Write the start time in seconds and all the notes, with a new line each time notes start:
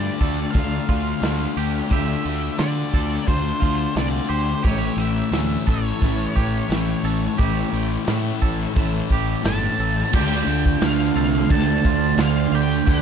Already playing: D3 A3 D4 F4 D5
0.20 D2 A3 D4 F4 A4, kick, open hi-hat
0.51 D3 F5, open hi-hat
0.55 D2 A3 D4 F4, kick
0.89 D2 F4, kick, open hi-hat
1.21 D2 D3 A3 D4, snare, open hi-hat
1.26 F4
1.41 snare
1.57 D2 G4, open hi-hat
1.90 D2 D3 A3 D4 F4 G4 E5, kick, open hi-hat
2.24 D2 A3 D4, open hi-hat
2.58 D3 A3 D4 F4 D5, snare, open hi-hat
2.92 D2 A3 D4 F4 A4, kick, open hi-hat
3.27 D2 D3 A3 D4 F4 C5, kick, open hi-hat
3.60 D2 F4, kick, open hi-hat
3.95 C2 D3 A3 D4 F4 D5, snare, open hi-hat
4.29 D2 G4 C5, open hi-hat
4.63 A1 A2 E3 A3 C#4 G4 C#5, kick, open hi-hat
4.67 E4
4.96 A1 E3 A3 E5, open hi-hat
5.31 D2 A2 E3 A3 C#4 E4, snare, open hi-hat
5.66 A1 A3 C#4 E4 A4 C#5, kick, open hi-hat
6.01 A1 A2 E3 A3 C#4 E4, kick, open hi-hat
6.36 A1 G4, kick, open hi-hat
6.69 A1 A2 E3 A3 C#4 E4, snare, open hi-hat
7.03 A1 A4, open hi-hat
7.38 A1 A2 E3 A3 C#4 E4 G4, kick, open hi-hat
7.72 A1 E3 A3, open hi-hat
8.05 A2 E3 A3 C#4, snare, open hi-hat
8.09 E4
8.41 A1 A3 C#4 E4 A4, kick, open hi-hat
8.74 A1 A2 E3 A3 C#4 E4, kick, open hi-hat
9.10 A1 G4, kick, open hi-hat
9.42 G1 A2 E3 A3 C#4 A5, snare, open hi-hat
9.48 E4
9.63 snare
9.78 A1 A4, open hi-hat
10.13 D2 D3 A3 D4 F4 G4 G5, kick, crash
10.30 tambourine
10.46 D2 A3 D4, tambourine
10.65 kick
10.81 D2 D3 A3 D4 F5, snare, tambourine, crash
11.15 C2 A4, tambourine
11.34 tambourine
11.50 D2 A5, kick, crash
11.68 tambourine
11.85 D2 A3 D4 F4, kick, tambourine
12.04 tambourine
12.17 D2 D3 A3 D4 F5, snare, tambourine, crash
12.38 tambourine
12.51 D2 D4 G4 G5, tambourine
12.56 A3
12.71 tambourine
12.86 D2 D3 A3 D4 G4 F5, kick, crash